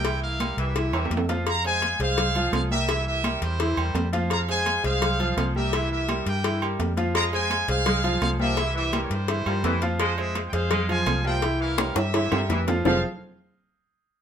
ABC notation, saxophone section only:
X:1
M:4/4
L:1/8
Q:1/4=169
K:Fm
V:1 name="Saxophone section" clef=bass
z3 =E,2 E,3 | z8 | z8 | z8 |
z8 | A,4 A,3 F,- | F, =E,4 F, E,2 | A,4 A,3 F,- |
F, =E,4 F, E,2 | F, z6 z |]